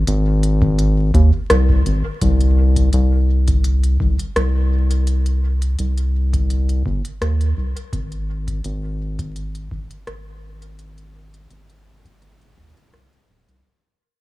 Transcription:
0.07 1.11 G#1 loud
0.07 closed hi-hat medium
0.43 closed hi-hat soft
0.62 kick loud
0.79 closed hi-hat medium
1.14 1.31 D#2 loud
1.14 kick loud
1.14 closed hi-hat soft
1.50 1.82 C2 loud
1.50 cross-stick medium
1.50 closed hi-hat medium
1.69 kick medium
1.86 2.03 G#1 medium
1.86 closed hi-hat soft
2.21 2.90 C2 loud
2.21 kick loud
2.21 closed hi-hat medium
2.40 closed hi-hat soft
2.76 kick medium
2.76 closed hi-hat soft
2.93 3.97 C2 loud
2.93 closed hi-hat medium
3.48 kick loud
3.48 closed hi-hat soft
3.64 closed hi-hat medium
3.83 closed hi-hat soft
4.00 4.17 C2 medium
4.00 kick loud
4.19 closed hi-hat soft
4.36 5.76 C2 medium
4.36 cross-stick medium
4.36 closed hi-hat medium
4.91 closed hi-hat soft
5.07 closed hi-hat medium
5.26 closed hi-hat soft
5.62 closed hi-hat soft
5.79 6.83 C2 loud
5.79 closed hi-hat medium
5.97 closed hi-hat soft
6.33 kick loud
6.33 closed hi-hat soft
6.50 closed hi-hat medium
6.69 closed hi-hat soft
6.86 7.03 G1 medium
6.86 kick loud
7.05 closed hi-hat soft
7.21 7.53 D#2 loud
7.21 cross-stick medium
7.21 closed hi-hat medium
7.41 closed hi-hat soft
7.57 7.74 C2 medium
7.77 closed hi-hat soft
7.93 8.61 G#1 medium
7.93 kick loud
7.93 closed hi-hat soft
8.12 closed hi-hat soft
8.47 kick medium
8.47 closed hi-hat soft
8.64 9.68 G#1 loud
8.64 closed hi-hat medium
9.19 kick loud
9.19 closed hi-hat soft
9.36 closed hi-hat medium
9.55 closed hi-hat soft
9.71 9.88 G#1 medium
9.71 kick loud
9.91 closed hi-hat soft
10.07 11.47 G#1 medium
10.07 cross-stick medium
10.07 closed hi-hat soft
10.62 closed hi-hat soft
10.79 closed hi-hat soft
10.98 closed hi-hat soft
11.34 closed hi-hat soft
11.50 12.54 G#1 loud
11.50 closed hi-hat soft
11.70 closed hi-hat soft
12.05 kick medium
12.05 closed hi-hat soft
12.22 closed hi-hat soft
12.41 closed hi-hat soft
12.57 12.74 D#2 medium
12.57 kick medium
12.77 closed hi-hat soft
12.93 13.10 C2 medium
12.93 cross-stick medium
12.93 closed hi-hat soft
13.13 closed hi-hat soft
13.29 13.45 D#1 medium
13.48 13.63 C2 medium
13.48 closed hi-hat soft

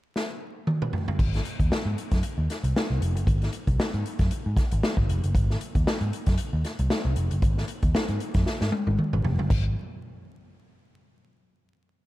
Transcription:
0.16 snare medium
0.67 mid tom medium
0.82 mid tom medium
0.93 floor tom medium
1.08 floor tom medium
1.19 1.39 G#1 loud
1.19 kick loud
1.19 crash medium
1.34 snare soft
1.34 closed hi-hat soft
1.45 closed hi-hat medium
1.60 1.69 D#2 medium
1.60 kick medium
1.60 closed hi-hat soft
1.71 muted picked electric bass stroke soft
1.71 snare loud
1.85 1.94 G#2 medium
1.98 closed hi-hat medium
2.11 2.21 F#2 medium
2.11 kick medium
2.11 snare soft
2.11 closed hi-hat medium
2.23 closed hi-hat medium
2.38 2.46 D#2 medium
2.50 snare soft
2.50 closed hi-hat medium
2.64 2.72 C2 medium
2.64 closed hi-hat soft
2.76 snare loud
2.90 2.99 C2 medium
3.01 3.15 F1 medium
3.01 closed hi-hat medium
3.15 3.24 F#1 medium
3.15 closed hi-hat medium
3.27 3.47 G#1 medium
3.27 kick loud
3.27 closed hi-hat medium
3.42 snare soft
3.42 closed hi-hat soft
3.53 closed hi-hat medium
3.67 3.76 C2 medium
3.67 kick medium
3.67 closed hi-hat soft
3.79 muted picked electric bass stroke soft
3.79 snare loud
3.93 4.03 G#2 medium
3.93 closed hi-hat soft
4.06 closed hi-hat medium
4.19 4.28 F#2 medium
4.19 kick medium
4.19 snare soft
4.19 closed hi-hat medium
4.31 muted picked electric bass stroke soft
4.31 closed hi-hat medium
4.46 4.55 G#2 medium
4.57 kick loud
4.57 snare soft
4.57 closed hi-hat medium
4.71 4.81 G#1 medium
4.71 closed hi-hat medium
4.83 snare loud
4.97 5.06 G#1 medium
4.97 kick medium
5.09 5.20 F1 medium
5.09 closed hi-hat medium
5.24 5.33 F#1 medium
5.24 closed hi-hat medium
5.35 5.55 G#1 medium
5.35 kick loud
5.35 closed hi-hat medium
5.50 snare soft
5.61 closed hi-hat medium
5.75 5.84 D#2 medium
5.75 kick medium
5.75 closed hi-hat soft
5.87 muted picked electric bass stroke soft
5.87 snare loud
6.01 6.10 G#2 medium
6.01 closed hi-hat soft
6.13 closed hi-hat medium
6.26 6.36 F#2 medium
6.26 kick medium
6.26 snare soft
6.26 closed hi-hat medium
6.38 closed hi-hat medium
6.53 6.62 D#2 medium
6.65 snare soft
6.65 closed hi-hat medium
6.79 6.88 C2 medium
6.79 closed hi-hat soft
6.90 snare loud
7.05 7.14 C2 medium
7.16 7.28 F1 medium
7.16 closed hi-hat medium
7.31 7.43 F#1 medium
7.31 closed hi-hat medium
7.42 7.63 G#1 loud
7.42 kick loud
7.42 closed hi-hat medium
7.58 snare soft
7.68 closed hi-hat medium
7.83 7.92 D#2 medium
7.83 kick medium
7.83 closed hi-hat soft
7.95 muted picked electric bass stroke soft
7.95 snare loud
8.08 8.18 G#2 medium
8.08 closed hi-hat soft
8.20 closed hi-hat medium
8.34 8.44 F#2 medium
8.34 kick medium
8.34 snare soft
8.34 closed hi-hat medium
8.46 muted picked electric bass stroke soft
8.46 snare medium
8.61 8.70 G#2 medium
8.61 snare soft
8.72 high tom medium
8.87 8.96 G#1 medium
8.87 high tom medium
8.99 mid tom medium
9.13 9.22 G#1 medium
9.13 mid tom medium
9.23 9.38 F1 medium
9.23 floor tom medium
9.38 9.47 F#1 medium
9.38 floor tom medium
9.50 9.74 G#1 medium
9.50 kick loud
9.50 crash medium

